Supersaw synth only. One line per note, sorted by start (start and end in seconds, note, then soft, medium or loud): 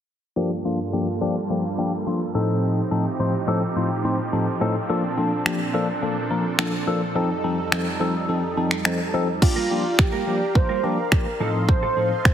0.36 2.33 G2 medium
0.36 2.33 G3 medium
0.36 2.33 A#3 medium
0.36 2.33 F4 medium
0.36 2.33 A4 medium
2.35 4.87 A2 medium
2.35 9.38 F3 medium
2.35 7.12 C4 medium
2.35 4.87 D#4 medium
2.35 4.87 G4 medium
4.89 7.13 A#2 medium
4.89 7.14 D4 medium
4.89 9.38 A4 medium
7.16 9.40 F2 medium
7.16 9.40 G3 medium
7.16 9.40 D#4 medium
9.42 11.38 G4 medium
9.42 11.38 D5 medium
9.42 12.34 F5 medium
9.42 11.38 A#5 medium
11.41 12.34 A4 medium
11.41 12.34 D#5 medium
11.41 12.34 C6 medium